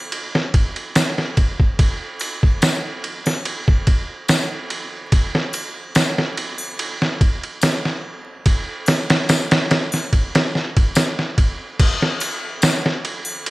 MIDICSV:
0, 0, Header, 1, 2, 480
1, 0, Start_track
1, 0, Tempo, 833333
1, 1031, Time_signature, 4, 2, 24, 8
1, 7777, End_track
2, 0, Start_track
2, 0, Title_t, "Drums"
2, 70, Note_on_c, 9, 51, 74
2, 127, Note_off_c, 9, 51, 0
2, 202, Note_on_c, 9, 38, 56
2, 259, Note_off_c, 9, 38, 0
2, 311, Note_on_c, 9, 51, 60
2, 312, Note_on_c, 9, 36, 82
2, 368, Note_off_c, 9, 51, 0
2, 369, Note_off_c, 9, 36, 0
2, 438, Note_on_c, 9, 51, 40
2, 496, Note_off_c, 9, 51, 0
2, 550, Note_on_c, 9, 51, 83
2, 552, Note_on_c, 9, 54, 75
2, 553, Note_on_c, 9, 38, 113
2, 554, Note_on_c, 9, 81, 51
2, 608, Note_off_c, 9, 51, 0
2, 609, Note_off_c, 9, 54, 0
2, 610, Note_off_c, 9, 38, 0
2, 612, Note_off_c, 9, 81, 0
2, 680, Note_on_c, 9, 38, 45
2, 738, Note_off_c, 9, 38, 0
2, 790, Note_on_c, 9, 51, 65
2, 791, Note_on_c, 9, 36, 89
2, 847, Note_off_c, 9, 51, 0
2, 849, Note_off_c, 9, 36, 0
2, 919, Note_on_c, 9, 36, 86
2, 977, Note_off_c, 9, 36, 0
2, 1031, Note_on_c, 9, 51, 75
2, 1032, Note_on_c, 9, 36, 101
2, 1089, Note_off_c, 9, 36, 0
2, 1089, Note_off_c, 9, 51, 0
2, 1264, Note_on_c, 9, 81, 60
2, 1272, Note_on_c, 9, 51, 62
2, 1322, Note_off_c, 9, 81, 0
2, 1329, Note_off_c, 9, 51, 0
2, 1400, Note_on_c, 9, 36, 88
2, 1457, Note_off_c, 9, 36, 0
2, 1508, Note_on_c, 9, 54, 68
2, 1511, Note_on_c, 9, 51, 88
2, 1514, Note_on_c, 9, 38, 110
2, 1565, Note_off_c, 9, 54, 0
2, 1568, Note_off_c, 9, 51, 0
2, 1571, Note_off_c, 9, 38, 0
2, 1751, Note_on_c, 9, 51, 65
2, 1808, Note_off_c, 9, 51, 0
2, 1877, Note_on_c, 9, 81, 72
2, 1882, Note_on_c, 9, 38, 53
2, 1934, Note_off_c, 9, 81, 0
2, 1939, Note_off_c, 9, 38, 0
2, 1990, Note_on_c, 9, 51, 78
2, 2047, Note_off_c, 9, 51, 0
2, 2119, Note_on_c, 9, 36, 94
2, 2176, Note_off_c, 9, 36, 0
2, 2228, Note_on_c, 9, 51, 65
2, 2230, Note_on_c, 9, 36, 85
2, 2286, Note_off_c, 9, 51, 0
2, 2288, Note_off_c, 9, 36, 0
2, 2468, Note_on_c, 9, 54, 78
2, 2470, Note_on_c, 9, 51, 86
2, 2473, Note_on_c, 9, 38, 116
2, 2525, Note_off_c, 9, 54, 0
2, 2528, Note_off_c, 9, 51, 0
2, 2531, Note_off_c, 9, 38, 0
2, 2709, Note_on_c, 9, 51, 61
2, 2767, Note_off_c, 9, 51, 0
2, 2950, Note_on_c, 9, 51, 77
2, 2951, Note_on_c, 9, 36, 98
2, 3007, Note_off_c, 9, 51, 0
2, 3009, Note_off_c, 9, 36, 0
2, 3081, Note_on_c, 9, 38, 52
2, 3139, Note_off_c, 9, 38, 0
2, 3185, Note_on_c, 9, 81, 59
2, 3190, Note_on_c, 9, 51, 69
2, 3243, Note_off_c, 9, 81, 0
2, 3247, Note_off_c, 9, 51, 0
2, 3427, Note_on_c, 9, 54, 69
2, 3430, Note_on_c, 9, 51, 90
2, 3433, Note_on_c, 9, 38, 114
2, 3484, Note_off_c, 9, 54, 0
2, 3487, Note_off_c, 9, 51, 0
2, 3490, Note_off_c, 9, 38, 0
2, 3561, Note_on_c, 9, 38, 52
2, 3619, Note_off_c, 9, 38, 0
2, 3672, Note_on_c, 9, 51, 63
2, 3729, Note_off_c, 9, 51, 0
2, 3792, Note_on_c, 9, 81, 69
2, 3849, Note_off_c, 9, 81, 0
2, 3912, Note_on_c, 9, 51, 78
2, 3970, Note_off_c, 9, 51, 0
2, 4043, Note_on_c, 9, 38, 56
2, 4100, Note_off_c, 9, 38, 0
2, 4153, Note_on_c, 9, 36, 88
2, 4153, Note_on_c, 9, 51, 64
2, 4210, Note_off_c, 9, 36, 0
2, 4210, Note_off_c, 9, 51, 0
2, 4282, Note_on_c, 9, 51, 41
2, 4340, Note_off_c, 9, 51, 0
2, 4386, Note_on_c, 9, 54, 75
2, 4390, Note_on_c, 9, 81, 55
2, 4393, Note_on_c, 9, 51, 87
2, 4396, Note_on_c, 9, 38, 120
2, 4443, Note_off_c, 9, 54, 0
2, 4447, Note_off_c, 9, 81, 0
2, 4451, Note_off_c, 9, 51, 0
2, 4453, Note_off_c, 9, 38, 0
2, 4524, Note_on_c, 9, 38, 46
2, 4581, Note_off_c, 9, 38, 0
2, 4871, Note_on_c, 9, 51, 81
2, 4872, Note_on_c, 9, 36, 96
2, 4929, Note_off_c, 9, 51, 0
2, 4930, Note_off_c, 9, 36, 0
2, 5105, Note_on_c, 9, 81, 63
2, 5113, Note_on_c, 9, 51, 73
2, 5116, Note_on_c, 9, 38, 98
2, 5163, Note_off_c, 9, 81, 0
2, 5171, Note_off_c, 9, 51, 0
2, 5174, Note_off_c, 9, 38, 0
2, 5241, Note_on_c, 9, 51, 74
2, 5243, Note_on_c, 9, 38, 96
2, 5298, Note_off_c, 9, 51, 0
2, 5301, Note_off_c, 9, 38, 0
2, 5351, Note_on_c, 9, 54, 63
2, 5352, Note_on_c, 9, 51, 83
2, 5355, Note_on_c, 9, 38, 109
2, 5408, Note_off_c, 9, 54, 0
2, 5409, Note_off_c, 9, 51, 0
2, 5412, Note_off_c, 9, 38, 0
2, 5480, Note_on_c, 9, 51, 77
2, 5482, Note_on_c, 9, 38, 105
2, 5537, Note_off_c, 9, 51, 0
2, 5540, Note_off_c, 9, 38, 0
2, 5592, Note_on_c, 9, 51, 76
2, 5595, Note_on_c, 9, 38, 96
2, 5649, Note_off_c, 9, 51, 0
2, 5652, Note_off_c, 9, 38, 0
2, 5714, Note_on_c, 9, 81, 76
2, 5724, Note_on_c, 9, 38, 43
2, 5772, Note_off_c, 9, 81, 0
2, 5781, Note_off_c, 9, 38, 0
2, 5833, Note_on_c, 9, 36, 70
2, 5833, Note_on_c, 9, 51, 54
2, 5891, Note_off_c, 9, 36, 0
2, 5891, Note_off_c, 9, 51, 0
2, 5962, Note_on_c, 9, 51, 75
2, 5965, Note_on_c, 9, 38, 105
2, 6019, Note_off_c, 9, 51, 0
2, 6022, Note_off_c, 9, 38, 0
2, 6079, Note_on_c, 9, 38, 42
2, 6136, Note_off_c, 9, 38, 0
2, 6201, Note_on_c, 9, 51, 58
2, 6202, Note_on_c, 9, 36, 82
2, 6259, Note_off_c, 9, 36, 0
2, 6259, Note_off_c, 9, 51, 0
2, 6309, Note_on_c, 9, 54, 81
2, 6314, Note_on_c, 9, 51, 79
2, 6317, Note_on_c, 9, 38, 104
2, 6366, Note_off_c, 9, 54, 0
2, 6371, Note_off_c, 9, 51, 0
2, 6374, Note_off_c, 9, 38, 0
2, 6444, Note_on_c, 9, 38, 44
2, 6502, Note_off_c, 9, 38, 0
2, 6554, Note_on_c, 9, 36, 76
2, 6554, Note_on_c, 9, 51, 62
2, 6611, Note_off_c, 9, 36, 0
2, 6611, Note_off_c, 9, 51, 0
2, 6794, Note_on_c, 9, 36, 106
2, 6794, Note_on_c, 9, 49, 89
2, 6794, Note_on_c, 9, 51, 80
2, 6852, Note_off_c, 9, 36, 0
2, 6852, Note_off_c, 9, 49, 0
2, 6852, Note_off_c, 9, 51, 0
2, 6926, Note_on_c, 9, 38, 50
2, 6983, Note_off_c, 9, 38, 0
2, 7029, Note_on_c, 9, 81, 65
2, 7035, Note_on_c, 9, 51, 67
2, 7087, Note_off_c, 9, 81, 0
2, 7092, Note_off_c, 9, 51, 0
2, 7269, Note_on_c, 9, 54, 78
2, 7273, Note_on_c, 9, 51, 98
2, 7276, Note_on_c, 9, 38, 118
2, 7326, Note_off_c, 9, 54, 0
2, 7331, Note_off_c, 9, 51, 0
2, 7334, Note_off_c, 9, 38, 0
2, 7406, Note_on_c, 9, 38, 55
2, 7463, Note_off_c, 9, 38, 0
2, 7515, Note_on_c, 9, 51, 66
2, 7573, Note_off_c, 9, 51, 0
2, 7631, Note_on_c, 9, 81, 79
2, 7689, Note_off_c, 9, 81, 0
2, 7755, Note_on_c, 9, 51, 80
2, 7777, Note_off_c, 9, 51, 0
2, 7777, End_track
0, 0, End_of_file